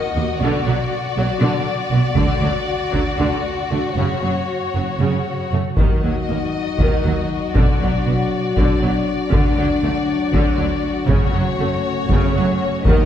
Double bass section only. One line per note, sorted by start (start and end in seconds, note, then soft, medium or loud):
0.15 0.23 D#2 soft
0.40 0.48 B1 medium
0.65 0.73 B1 soft
1.16 1.24 B1 soft
1.41 1.49 B1 medium
1.91 1.99 B1 soft
2.15 2.23 D2 medium
2.41 2.49 D2 soft
2.92 3.00 D2 soft
3.18 3.26 D2 medium
3.70 3.78 D2 soft
3.96 4.04 F#1 soft
4.23 4.31 F#1 soft
4.75 4.83 F#1 soft
5.00 5.08 F#1 soft
5.53 5.61 F#1 soft
5.78 5.86 D#2 medium
6.03 6.11 D#2 soft
6.30 6.38 D#2 soft
6.80 6.88 D#2 medium
7.05 7.13 D#2 soft
7.56 7.64 B1 medium
7.81 7.89 B1 soft
8.06 8.14 B1 soft
8.56 8.64 B1 soft
8.82 8.90 B1 soft
9.32 9.40 D2 medium
9.57 9.65 D2 soft
9.82 9.90 D2 soft
10.33 10.41 D2 medium
10.58 10.66 D2 soft
11.08 11.16 F#1 medium
11.33 11.41 F#1 soft
11.59 11.67 F#1 soft
12.09 12.17 F#1 medium
12.36 12.44 F#1 soft
12.86 12.94 D#2 medium